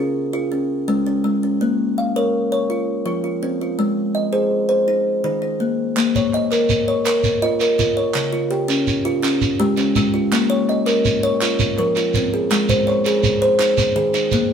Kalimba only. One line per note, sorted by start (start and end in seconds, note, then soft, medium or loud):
0.00 0.33 C#4 medium
0.00 0.32 F4 medium
0.00 0.32 G#4 medium
0.33 0.69 F4 medium
0.52 0.87 C#4 medium
0.88 1.23 G#3 medium
0.88 1.05 C#4 medium
1.06 1.42 C#4 medium
1.24 1.60 G#3 medium
1.43 1.79 C#4 medium
1.61 1.97 A#3 medium
1.98 2.52 F5 medium
2.16 2.52 A#4 medium
2.16 2.51 C#5 medium
2.52 2.70 C#5 medium
2.70 3.05 F4 medium
3.06 3.42 F3 medium
3.06 3.23 F4 medium
3.24 3.60 F4 medium
3.43 3.79 C4 medium
3.61 3.98 F4 medium
3.79 4.15 G#3 medium
4.15 4.70 D#5 medium
4.33 4.69 G#4 medium
4.33 4.68 C5 medium
4.69 4.88 C5 medium
4.88 5.23 D#4 medium
5.24 5.61 D#3 medium
5.24 5.41 D#4 medium
5.42 5.97 D#4 medium
5.60 5.95 A#3 medium
5.97 6.33 A#3 medium
6.16 6.70 C#5 medium
6.34 6.88 D#5 medium
6.52 7.05 A#4 medium
6.88 7.24 C#5 medium
7.06 7.60 A#4 medium
7.42 7.78 F4 medium
7.42 7.97 D#5 medium
7.61 8.15 A#4 medium
7.79 8.15 F4 medium
7.97 8.33 C#5 medium
8.15 8.51 C#3 medium
8.33 8.87 F4 medium
8.51 9.05 G4 medium
8.68 9.05 C#4 medium
9.05 9.42 F4 medium
9.22 9.76 C#4 medium
9.60 9.95 G#3 medium
9.60 10.14 G4 medium
9.77 10.32 C#4 medium
9.96 10.33 G#3 medium
10.14 10.50 F4 medium
10.32 10.69 A#3 medium
10.50 11.05 C#5 medium
10.69 11.24 D#5 medium
10.86 11.41 A#4 medium
11.23 11.42 C#5 medium
11.42 11.96 F4 medium
11.78 12.15 F3 medium
11.78 12.33 A#4 medium
11.97 12.51 F4 medium
12.16 12.51 C4 medium
12.34 12.70 G#4 medium
12.51 12.87 G#3 medium
12.69 13.24 C5 medium
12.87 13.42 C#5 medium
13.06 13.61 G#4 medium
13.42 13.60 C5 medium
13.59 14.13 D#4 medium
13.96 14.33 D#3 medium
13.96 14.51 G#4 medium
14.14 14.53 D#4 medium
14.33 14.53 A#3 medium